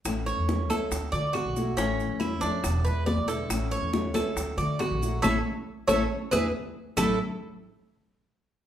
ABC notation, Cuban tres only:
X:1
M:4/4
L:1/8
Q:1/4=139
K:A
V:1 name="Cuban tres"
z c2 A2 d F2 | C2 E D2 B d A- | A c2 A2 d F2 | [EAc] z2 [EAc] z [EGB] z2 |
[A,EA] z6 z |]